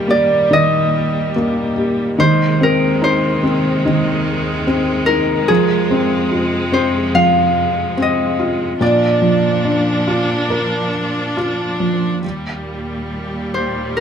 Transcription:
Already playing: string section D#2 A#2 G3, felt piano D#3 A#3 G4, harp A#4 C5
0.08 felt piano A#3, harp D5
0.51 felt piano D#3, harp D#5
1.36 felt piano A#3
1.76 felt piano G4
2.18 string section C3 D#3 G#3, felt piano D#3, harp C5
2.61 felt piano C4, harp A#4
3.02 felt piano D#4, harp C5
3.43 felt piano C4
3.85 felt piano D#3
4.67 felt piano C4
5.06 felt piano D#4, harp A#4
5.48 string section F2, felt piano F3, harp G#4
5.91 felt piano C4
6.32 felt piano F4
6.72 felt piano C4, harp C5
7.15 felt piano F3, harp F5
7.97 felt piano C4
8.02 harp D#5
8.39 felt piano F4
8.81 string section A#2 F3 D4, felt piano A#2, harp D5
9.22 felt piano F3
9.64 felt piano D4
10.07 felt piano F4
10.50 felt piano A#4
11.37 felt piano F4
11.80 felt piano F3
12.23 string section D#2 A#2 G3
13.54 harp C5
13.97 harp A#4

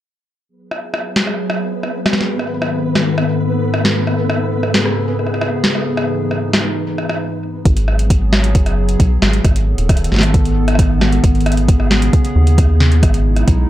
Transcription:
0.49 ambient pad F#3 B3 G#4, synth texture B3 B4
0.71 cross-stick
0.94 cross-stick
1.16 snare
1.27 cross-stick
1.50 cross-stick
1.83 cross-stick
2.06 cross-stick, snare
2.13 snare
2.21 snare
2.28 ambient pad G#2 D#3 A4
2.39 cross-stick
2.62 cross-stick
2.95 cross-stick, snare
3.18 cross-stick
3.74 cross-stick
3.85 snare
4.07 ambient pad C#3 G#4, cross-stick
4.30 cross-stick
4.63 cross-stick
4.74 snare
4.85 cross-stick
5.19 cross-stick
5.27 cross-stick
5.34 cross-stick
5.41 cross-stick
5.64 snare
5.75 cross-stick
5.86 ambient pad E3 D#4
5.97 cross-stick
6.31 cross-stick
6.53 cross-stick, snare
6.98 cross-stick
7.09 cross-stick
7.65 analog synth bass G#1, ambient pad F#3 B3 G#4, kick, closed hi-hat
7.77 closed hi-hat
7.88 cross-stick
7.99 closed hi-hat
8.10 kick, closed hi-hat
8.33 cross-stick, snare
8.44 closed hi-hat
8.55 analog synth bass F#1, kick, closed hi-hat
8.66 cross-stick, closed hi-hat
8.89 closed hi-hat
9.00 analog synth bass B1, kick, closed hi-hat
9.22 analog synth bass G#1, cross-stick, snare
9.33 closed hi-hat
9.44 analog synth bass G#1, ambient pad D#3 B3 A4, kick, cross-stick, closed hi-hat
9.56 closed hi-hat
9.78 analog synth bass D#1, closed hi-hat
9.89 kick, cross-stick, closed hi-hat
9.97 closed hi-hat
10.04 closed hi-hat
10.12 analog synth bass G#1, snare
10.14 snare
10.16 snare
10.19 snare
10.21 cross-stick, snare, closed hi-hat
10.34 kick, closed hi-hat
10.45 closed hi-hat
10.68 cross-stick, closed hi-hat
10.75 kick, cross-stick, closed hi-hat
10.83 cross-stick
11.01 cross-stick, snare
11.12 closed hi-hat
11.24 analog synth bass G#1, ambient pad C#3 G#4, kick, closed hi-hat
11.35 closed hi-hat
11.40 closed hi-hat
11.46 cross-stick, closed hi-hat
11.52 closed hi-hat
11.57 closed hi-hat
11.68 kick, closed hi-hat
11.80 cross-stick
11.91 snare
12.02 closed hi-hat
12.13 kick, closed hi-hat
12.25 closed hi-hat
12.36 analog synth bass D#2
12.47 closed hi-hat
12.58 kick, cross-stick, closed hi-hat
12.80 snare
12.92 closed hi-hat
13.03 analog synth bass G#1, ambient pad G#3 D#4 E4, kick, cross-stick, closed hi-hat
13.14 closed hi-hat
13.36 cross-stick, closed hi-hat
13.48 analog synth bass B1, kick, closed hi-hat

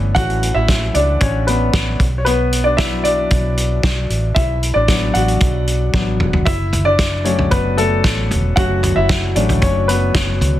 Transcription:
Already playing: fingered electric bass G1, grand piano E3 A3 B3 C#4 D4 E4 A4 B4 C#5 D5 E5
0.15 fingered electric bass A1, grand piano E3 A3 C#4 F#4 F#5, kick, closed hi-hat
0.30 closed hi-hat
0.43 closed hi-hat
0.55 fingered electric bass A1, grand piano E4 E5
0.68 kick, snare, closed hi-hat
0.94 fingered electric bass C#2, grand piano D4 D5, closed hi-hat
1.20 fingered electric bass A1, grand piano C#4 C#5, kick, closed hi-hat
1.47 grand piano B3 B4, closed hi-hat
1.73 fingered electric bass A1, kick, snare, closed hi-hat
2.00 fingered electric bass B1, kick, closed hi-hat
2.18 grand piano C#5
2.25 grand piano B3 B4, closed hi-hat
2.52 closed hi-hat
2.64 grand piano D4 D5
2.77 grand piano F#3 B3 D4 E4 E5, kick, snare, closed hi-hat
3.04 grand piano D4 D5, closed hi-hat
3.30 fingered electric bass B1, kick, closed hi-hat
3.57 closed hi-hat
3.83 fingered electric bass B1, kick, snare, closed hi-hat
4.10 fingered electric bass A1, closed hi-hat
4.35 fingered electric bass B1, grand piano E4 E5, kick, closed hi-hat
4.63 closed hi-hat
4.74 fingered electric bass A1, grand piano D4 D5
4.88 grand piano F#3 B3 D4, kick, snare, closed hi-hat
5.14 fingered electric bass A1, grand piano F#4 F#5, closed hi-hat
5.28 closed hi-hat
5.40 fingered electric bass B1, kick, closed hi-hat
5.67 closed hi-hat
5.93 fingered electric bass A1, grand piano F#3 B3 D4, kick, snare
6.20 fingered electric bass E1, mid tom
6.33 floor tom
6.45 fingered electric bass F#1, grand piano E4 E5, kick, closed hi-hat
6.73 closed hi-hat, floor tom
6.85 grand piano D4 D5
6.99 kick, snare, closed hi-hat
7.24 grand piano F#3 A3 C#4 C#5, closed hi-hat
7.39 floor tom
7.51 fingered electric bass F#1, grand piano B3 B4, kick, closed hi-hat
7.78 grand piano A3 A4, closed hi-hat
8.04 fingered electric bass A1, kick, snare, closed hi-hat
8.30 fingered electric bass E1, closed hi-hat, floor tom
8.56 fingered electric bass F#1, grand piano F#3 A3 C#4 F#4 F#5, kick, closed hi-hat
8.83 closed hi-hat, floor tom
8.96 fingered electric bass F#1, grand piano E4 E5
9.09 kick, snare, closed hi-hat
9.35 fingered electric bass A1, grand piano F#3 A3 C#4 D4 D5, closed hi-hat
9.49 closed hi-hat, floor tom
9.62 grand piano C#4 C#5, kick, closed hi-hat
9.88 grand piano B3 B4, closed hi-hat
10.15 fingered electric bass F#1, kick, snare, closed hi-hat
10.41 fingered electric bass C#2, closed hi-hat, floor tom

